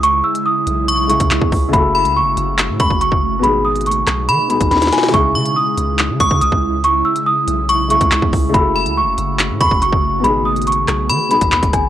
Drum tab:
HH |x-----x-----x---x---x-x-x---o---|x-----x-----x---x---x---x-------|x-----xxxx--x---x---x-x-x-x-x---|x-----x-----x---x---x---x-------|
CP |------------------------x-------|----------------x---------------|------------x-------------------|----------------x---------------|
SD |--------------------------------|--------------------------------|------------r-----------oooooooo|--------------------------------|
BD |----------------------o---o-o---|o-------------------o-o---o-----|----------------------o---------|o-------------------o-o---o-----|

HH |x-----x-----x---x---x-x-x---o---|x-----x-----x---x---x---x-------|x-----xxxx--x---x---x-x-x-x-x---|
CP |------------------------x-------|----------------x---------------|------------x-----------x-------|
SD |--------------------------------|--------------------------------|------------r---------------r---|
BD |----------------------o---o-o---|o-------------------o-o---o-----|----------------------o---o-o---|